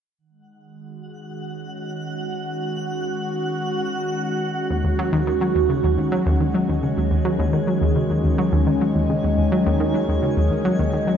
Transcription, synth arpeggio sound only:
4.70 4.83 D#2 medium
4.84 4.90 D#2 medium
4.99 5.12 F#3 medium
5.13 5.22 D#2 loud
5.27 5.33 D#3 medium
5.41 5.47 F#3 medium
5.55 5.64 D#2 medium
5.69 5.83 C#3 medium
5.84 5.97 D#2 medium
5.98 6.03 D#2 medium
6.12 6.25 F#3 medium
6.26 6.35 D#2 medium
6.40 6.46 D#3 medium
6.54 6.60 F#3 medium
6.68 6.78 D#2 medium
6.83 6.96 C#3 medium
6.97 7.10 D#2 medium
7.11 7.17 D#2 medium
7.25 7.39 F#3 medium
7.39 7.48 D#2 loud
7.53 7.59 D#3 medium
7.67 7.73 F#3 medium
7.81 7.91 D#2 medium
7.96 8.09 C#3 medium
8.10 8.23 D#2 medium
8.24 8.30 D#2 medium
8.38 8.52 F#3 medium
8.52 8.61 D#2 loud
8.67 8.72 D#3 medium
8.81 8.86 F#3 medium
8.95 9.04 D#2 medium
9.09 9.23 C#3 medium
9.24 9.36 D#2 medium
9.38 9.43 D#2 medium
9.52 9.65 F#3 medium
9.66 9.75 D#2 loud
9.80 9.85 D#3 medium
9.94 10.00 F#3 medium
10.08 10.17 D#2 medium
10.22 10.36 C#3 medium
10.37 10.50 D#2 medium
10.51 10.56 D#2 medium
10.65 10.78 F#3 medium
10.79 10.88 D#2 medium
10.93 10.99 D#3 medium
11.07 11.13 F#3 medium

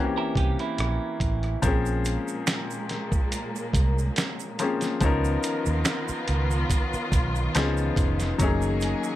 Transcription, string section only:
1.62 4.97 A#2 medium
1.62 4.97 G#3 medium
1.62 4.97 A#3 medium
5.00 9.16 D#3 medium
5.00 8.35 B3 medium
5.00 8.35 F4 medium
5.00 7.52 A#4 medium
8.39 9.16 A#3 medium
8.39 9.16 G#4 loud

